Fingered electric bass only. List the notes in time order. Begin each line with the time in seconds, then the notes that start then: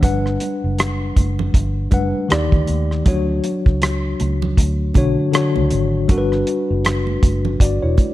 0.03 G1
0.64 F#1
1.17 F#1
1.54 G1
1.92 F#1
2.31 D#2
2.53 D2
2.69 D#2
3.07 D2
3.66 C#2
4.21 C#2
4.58 D2
4.96 B1
5.57 C#2
5.73 G#1
6.09 G1
6.70 F#1
7.23 F#1
7.60 G1
7.83 E1